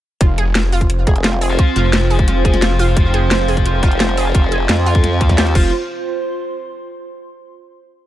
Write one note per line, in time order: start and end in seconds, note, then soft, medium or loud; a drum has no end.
0.21 1.06 F1 loud
0.21 5.51 C4 medium
0.21 0.28 F4 medium
0.21 5.51 F4 medium
0.21 5.54 F4 medium
0.21 5.51 C5 medium
0.21 kick loud
0.21 closed hi-hat loud
0.38 0.42 G#4 medium
0.38 closed hi-hat medium
0.45 5.55 C6 medium
0.55 0.60 F4 medium
0.55 snare loud
0.55 closed hi-hat loud
0.69 0.77 F4 loud
0.69 5.55 C5 medium
0.69 open hi-hat medium
0.81 kick medium
0.81 closed hi-hat soft
0.90 closed hi-hat loud
1.07 1.57 F1 loud
1.07 1.14 G#4 medium
1.07 kick loud
1.07 closed hi-hat medium
1.16 closed hi-hat soft
1.24 1.32 F4 medium
1.24 snare loud
1.24 closed hi-hat loud
1.33 snare soft
1.41 1.46 G#4 medium
1.41 open hi-hat medium
1.50 2.86 F4 medium
1.50 2.86 C5 medium
1.50 2.86 F5 loud
1.59 1.63 F4 medium
1.59 kick loud
1.59 closed hi-hat medium
1.76 2.95 F1 loud
1.76 1.80 F4 loud
1.76 closed hi-hat medium
1.93 snare loud
1.93 closed hi-hat loud
2.10 2.18 G#4 medium
2.10 open hi-hat medium
2.19 kick loud
2.19 closed hi-hat soft
2.28 2.35 F4 medium
2.28 snare soft
2.28 closed hi-hat medium
2.45 2.49 G#4 medium
2.45 kick loud
2.45 closed hi-hat medium
2.54 snare medium
2.54 closed hi-hat soft
2.62 2.67 F4 medium
2.62 snare loud
2.62 closed hi-hat medium
2.71 snare soft
2.79 2.84 F4 loud
2.79 open hi-hat medium
2.88 4.24 F4 medium
2.88 4.24 C5 medium
2.88 4.24 F5 medium
2.97 3.81 F1 loud
2.97 kick loud
2.97 closed hi-hat medium
3.14 3.21 G#4 medium
3.14 closed hi-hat medium
3.31 3.39 F4 medium
3.31 snare loud
3.31 closed hi-hat loud
3.48 3.53 G#4 medium
3.48 open hi-hat medium
3.57 kick medium
3.57 closed hi-hat soft
3.66 3.70 F4 medium
3.66 closed hi-hat medium
3.83 4.33 F1 medium
3.83 3.87 F4 loud
3.83 kick loud
3.83 closed hi-hat medium
3.92 closed hi-hat soft
4.00 snare loud
4.00 closed hi-hat medium
4.09 snare soft
4.17 4.25 G#4 medium
4.17 open hi-hat medium
4.26 5.54 F4 medium
4.26 5.54 C5 medium
4.26 5.54 F5 loud
4.34 4.68 F1 medium
4.34 4.42 F4 medium
4.34 kick loud
4.34 closed hi-hat medium
4.52 4.56 G#4 medium
4.52 closed hi-hat medium
4.69 5.30 F2 loud
4.69 4.73 F4 medium
4.69 snare loud
4.69 closed hi-hat medium
4.86 4.91 F4 loud
4.86 open hi-hat medium
4.95 kick loud
4.95 closed hi-hat soft
5.04 snare soft
5.04 closed hi-hat medium
5.21 5.32 F4 medium
5.21 kick loud
5.21 closed hi-hat medium
5.29 5.55 E2 loud
5.29 kick medium
5.29 snare medium
5.29 closed hi-hat soft
5.38 5.42 G4 medium
5.38 snare loud
5.38 closed hi-hat medium
5.47 snare soft
5.47 closed hi-hat soft
5.55 5.71 F1 loud
5.55 6.89 F4 medium
5.55 5.71 F4 loud
5.55 5.68 F4 medium
5.55 5.68 C5 medium
5.55 5.68 F5 medium
5.55 kick loud
5.55 crash medium
5.60 6.89 C5 medium
5.83 7.06 C6 medium